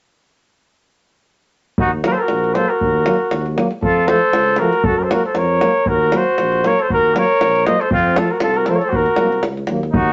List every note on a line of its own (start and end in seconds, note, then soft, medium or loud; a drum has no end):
1.78 2.07 D#2 medium
1.78 1.91 D#4 medium
1.78 1.91 F#4 medium
1.78 davul low medium
2.04 2.14 F#3 medium
2.04 2.14 A#3 medium
2.04 2.15 F#4 medium
2.04 2.13 A#4 medium
2.04 davul high medium
2.12 2.24 A4 medium
2.12 2.21 C5 medium
2.19 2.57 F#4 medium
2.19 2.55 A#4 medium
2.28 2.58 A#1 medium
2.28 davul high medium
2.44 davul high soft
2.54 2.65 F#3 medium
2.54 2.66 A#3 medium
2.54 2.71 A4 medium
2.54 2.70 C5 medium
2.54 davul high medium
2.69 3.57 F#4 medium
2.69 3.57 A#4 medium
2.69 davul high soft
2.81 3.09 D#2 medium
2.81 davul low medium
3.05 3.15 F#3 medium
3.05 3.16 A#3 medium
3.05 davul high medium
3.31 3.60 D#2 medium
3.31 davul high medium
3.46 davul high soft
3.57 3.67 F#3 medium
3.57 3.67 A#3 medium
3.57 davul high medium
3.71 davul high soft
3.81 4.10 F2 medium
3.81 4.11 F4 medium
3.81 4.10 A4 medium
3.81 davul low medium
4.07 4.18 F3 medium
4.07 4.18 A3 medium
4.07 4.61 A4 medium
4.07 4.60 C5 medium
4.07 davul high medium
4.33 4.61 C#2 medium
4.33 davul high medium
4.46 davul high soft
4.56 4.70 F3 medium
4.56 4.68 A3 medium
4.56 4.85 F#4 medium
4.56 4.86 A#4 medium
4.56 davul high medium
4.73 davul high soft
4.84 5.12 F#2 medium
4.84 4.97 F#4 medium
4.84 5.00 A4 medium
4.84 davul low loud
4.97 5.05 F#4 medium
4.97 5.05 A#4 medium
5.03 5.12 A4 soft
5.03 5.15 C5 medium
5.10 5.21 F#3 medium
5.10 5.21 A#3 medium
5.10 5.24 F#4 medium
5.10 5.25 A#4 medium
5.10 davul high medium
5.25 5.37 A4 medium
5.25 5.40 C5 medium
5.25 davul high soft
5.34 5.63 F2 medium
5.34 5.89 A#4 medium
5.34 5.90 C#5 medium
5.34 davul high medium
5.59 5.70 F#3 medium
5.59 5.72 A#3 soft
5.59 davul high medium
5.86 6.15 D#2 medium
5.86 6.12 F#4 medium
5.86 6.18 A#4 medium
5.86 davul low medium
6.12 6.23 F#3 medium
6.12 6.23 A#3 medium
6.12 6.67 F#4 medium
6.12 davul high medium
6.17 6.69 C5 loud
6.38 6.66 A#1 medium
6.38 davul high medium
6.52 davul high soft
6.63 6.74 F#3 medium
6.63 6.74 A#3 medium
6.63 6.81 A#4 medium
6.63 6.83 C#5 medium
6.63 davul high medium
6.79 6.88 A4 medium
6.79 6.91 C5 medium
6.79 davul high soft
6.89 7.17 D#2 medium
6.89 7.16 F#4 medium
6.89 7.20 A#4 loud
6.89 davul low medium
7.14 7.25 F#3 medium
7.14 7.24 A#3 medium
7.14 7.67 A#4 medium
7.14 davul high medium
7.18 7.68 C#5 medium
7.41 7.69 A#1 medium
7.41 davul high medium
7.56 davul high soft
7.66 7.77 F#3 medium
7.66 7.76 A#3 medium
7.66 7.82 C5 medium
7.66 7.82 D#5 medium
7.66 davul high medium
7.80 7.90 A4 medium
7.80 7.91 C5 medium
7.80 davul high soft
7.90 8.18 F2 medium
7.90 8.18 C4 medium
7.90 8.19 F4 loud
7.90 davul low medium
8.16 8.28 F3 medium
8.16 8.27 A3 medium
8.16 8.32 F4 medium
8.16 8.32 A4 medium
8.16 davul high medium
8.31 8.39 F#4 medium
8.31 8.42 A#4 medium
8.40 8.69 C2 medium
8.40 8.55 F4 medium
8.40 8.58 A4 medium
8.40 davul high medium
8.54 8.68 F#4 medium
8.54 8.71 A#4 medium
8.54 davul high soft
8.66 8.78 F3 medium
8.66 8.78 A3 medium
8.66 8.72 A4 medium
8.66 8.77 C5 medium
8.66 davul high medium
8.70 8.80 A#4 medium
8.75 8.91 A4 medium
8.75 8.86 C#5 medium
8.82 8.97 C5 medium
8.82 davul high soft
8.89 9.07 D#2 medium
8.89 9.42 F#4 medium
8.89 davul low medium
8.96 9.45 A#4 medium
9.06 davul high soft
9.16 9.41 C2 medium
9.16 9.27 F#3 medium
9.16 9.29 A#3 medium
9.16 davul high medium
9.32 davul high soft
9.43 9.66 C#2 medium
9.43 davul high medium
9.57 davul high soft
9.67 9.91 D#2 medium
9.67 9.79 F#3 medium
9.67 9.80 A#3 soft
9.67 davul high medium
9.83 davul high soft
9.92 10.13 D#2 medium
9.92 10.13 D#4 medium
9.92 10.13 F#4 medium
9.92 davul low medium